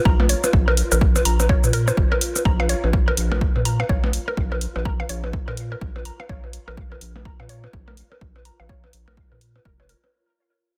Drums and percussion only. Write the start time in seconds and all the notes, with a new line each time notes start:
0.05 kick
0.20 percussion blips
0.29 open hi-hat
0.44 percussion blips, shaker
0.53 kick
0.68 percussion blips
0.77 open hi-hat
0.92 percussion blips, shaker
1.01 kick
1.16 percussion blips, shaker
1.25 open hi-hat
1.40 percussion blips, shaker
1.49 kick
1.64 percussion blips, shaker
1.73 open hi-hat
1.88 percussion blips, shaker
1.97 kick
2.12 percussion blips
2.21 open hi-hat
2.36 percussion blips, shaker
2.45 kick
2.60 percussion blips
2.69 open hi-hat
2.84 percussion blips
2.93 kick
3.08 percussion blips
3.17 open hi-hat
3.32 percussion blips
3.41 kick
3.56 percussion blips
3.65 open hi-hat
3.80 percussion blips
3.89 kick
4.04 percussion blips
4.13 open hi-hat
4.28 percussion blips
4.37 kick
4.52 percussion blips
4.61 open hi-hat
4.76 percussion blips
4.85 kick
5.00 percussion blips
5.09 open hi-hat
5.24 percussion blips
5.33 kick
5.48 percussion blips
5.57 open hi-hat
5.72 percussion blips
5.81 kick
5.96 percussion blips
6.05 open hi-hat
6.20 percussion blips
6.29 kick
6.44 percussion blips
6.53 open hi-hat
6.68 percussion blips
6.77 kick
6.92 percussion blips
7.01 open hi-hat
7.16 percussion blips
7.25 kick
7.40 percussion blips
7.49 open hi-hat
7.64 percussion blips
7.73 kick
7.88 percussion blips
7.97 open hi-hat
8.12 percussion blips
8.21 kick
8.36 percussion blips
8.45 open hi-hat
8.60 percussion blips
8.69 kick
8.84 percussion blips
8.93 open hi-hat
9.08 percussion blips
9.17 kick
9.32 percussion blips
9.41 open hi-hat
9.56 percussion blips
9.65 kick
9.80 percussion blips
9.89 open hi-hat
10.04 percussion blips